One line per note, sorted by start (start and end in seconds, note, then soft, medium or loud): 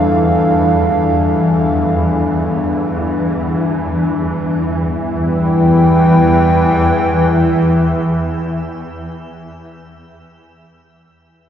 0.00 4.60 E2 medium
0.00 4.59 E3 medium
0.00 4.61 G3 medium
0.00 4.63 D4 medium
0.00 4.62 A4 medium
0.00 4.61 F5 medium
4.60 9.28 E2 medium
4.60 9.27 E3 medium
4.60 9.29 G3 medium
4.76 9.43 E4 medium
4.92 9.51 B4 medium
5.09 9.52 G5 medium